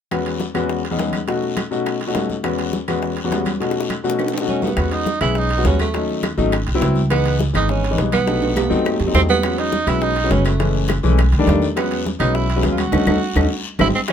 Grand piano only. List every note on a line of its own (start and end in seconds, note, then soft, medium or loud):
0.11 0.42 E2 medium
0.11 0.42 G#3 medium
0.11 0.42 B3 medium
0.11 0.42 C#4 medium
0.11 0.42 F#4 medium
0.54 0.80 E2 medium
0.54 0.80 G#3 medium
0.54 0.80 B3 medium
0.54 0.80 C#4 medium
0.54 0.80 F#4 medium
0.91 1.17 E2 medium
0.91 1.17 G#3 medium
0.91 1.17 B3 medium
0.91 1.17 C#4 medium
0.91 1.17 D#4 medium
1.27 1.58 B2 medium
1.27 1.58 A3 medium
1.27 1.58 C#4 medium
1.27 1.58 D#4 medium
1.27 1.59 F#4 medium
1.71 1.97 B2 medium
1.71 1.97 A3 medium
1.71 1.97 C#4 medium
1.71 1.97 D#4 medium
1.71 1.97 F#4 medium
2.07 2.33 B2 medium
2.07 2.33 A3 medium
2.07 2.33 C#4 medium
2.07 2.33 D#4 medium
2.07 2.33 F#4 medium
2.44 2.75 E2 medium
2.44 2.75 G#3 medium
2.44 2.75 B3 medium
2.44 2.75 C#4 medium
2.44 2.75 F#4 medium
2.88 3.14 E2 medium
2.88 3.14 G#3 medium
2.88 3.14 B3 medium
2.88 3.14 C#4 medium
2.88 3.14 F#4 medium
3.24 3.50 E2 medium
3.24 3.50 G#3 medium
3.24 3.50 B3 medium
3.24 3.50 C#4 medium
3.24 3.50 F#4 medium
3.60 3.91 B2 medium
3.60 3.91 A3 medium
3.60 3.91 C#4 medium
3.60 3.92 D#4 medium
3.60 3.92 F#4 medium
4.04 4.30 B2 medium
4.04 4.30 A3 medium
4.04 4.30 C#4 medium
4.04 4.30 D#4 medium
4.04 4.30 F#4 medium
4.40 4.66 B2 medium
4.40 4.66 A3 medium
4.40 4.67 C#4 medium
4.40 4.67 D#4 medium
4.40 4.67 F#4 medium
4.77 5.08 G#3 medium
4.77 5.08 B3 medium
4.77 5.08 C#4 medium
4.77 5.08 F#4 medium
5.21 5.46 G#3 medium
5.21 5.47 B3 medium
5.21 5.47 C#4 medium
5.21 5.47 G#4 medium
5.57 5.83 G#3 medium
5.57 5.83 B3 medium
5.57 5.83 C#4 medium
5.57 5.83 F#4 medium
5.94 6.25 F#3 medium
5.94 6.25 A3 medium
5.94 6.25 C#4 medium
5.94 6.25 D#4 medium
6.37 6.52 F#3 medium
6.37 6.52 A3 medium
6.37 6.53 C#4 medium
6.37 6.53 D#4 loud
6.75 7.00 F#3 loud
6.75 7.00 B3 medium
6.75 7.00 C4 medium
6.75 7.00 E4 loud
7.10 7.41 E3 medium
7.10 7.41 G#3 medium
7.10 7.41 B3 medium
7.10 7.41 D#4 medium
7.53 7.79 E3 medium
7.53 7.80 G#3 medium
7.53 7.80 B3 medium
7.53 7.80 D#4 medium
7.91 8.16 E3 medium
7.91 8.16 G#3 medium
7.91 8.16 B3 medium
7.91 8.17 D#4 medium
8.26 8.58 C3 medium
8.26 8.57 F#3 medium
8.26 8.57 A3 medium
8.26 8.58 D#4 medium
8.70 8.96 F#3 medium
8.70 8.96 A3 medium
8.70 8.96 C4 medium
8.70 8.96 D#4 loud
9.07 9.33 F#3 medium
9.07 9.33 A3 medium
9.07 9.33 C4 medium
9.07 9.33 D#4 medium
9.43 9.74 F#3 medium
9.43 9.74 G#3 medium
9.43 9.74 B3 medium
9.43 9.75 C#4 medium
9.87 10.13 F#3 medium
9.87 10.13 G#3 medium
9.87 10.13 B3 medium
9.87 10.13 C#4 medium
10.24 10.49 F#3 medium
10.24 10.49 G#3 medium
10.24 10.49 B3 medium
10.24 10.50 C#4 medium
10.60 10.90 E3 medium
10.60 10.90 G#3 medium
10.60 10.91 A3 medium
10.60 10.91 C#4 medium
11.03 11.18 E3 loud
11.03 11.18 G#3 medium
11.03 11.18 A3 medium
11.03 11.19 C#4 loud
11.39 11.65 D#3 medium
11.39 11.65 G3 medium
11.39 11.65 A3 medium
11.39 11.65 D4 loud
11.76 12.07 F#3 medium
11.76 12.07 G#3 medium
11.76 12.07 B3 medium
11.76 12.07 C#4 medium
12.20 12.45 F#3 medium
12.20 12.45 G#3 medium
12.20 12.46 B3 medium
12.20 12.46 C#4 medium
12.56 12.82 F#3 medium
12.56 12.82 G#3 medium
12.56 12.82 B3 medium
12.56 12.82 C#4 medium
12.92 13.02 A3 medium
12.92 13.02 C#4 medium
12.92 13.02 D#4 medium
13.07 13.16 A3 medium
13.07 13.16 C#4 medium
13.07 13.16 D#4 medium
13.36 13.45 A3 medium
13.36 13.46 C#4 medium
13.36 13.46 D#4 medium
13.79 13.89 F#3 medium
13.79 13.89 G#3 medium
13.79 13.89 C4 medium
14.09 14.12 E3 medium
14.09 14.12 F#3 medium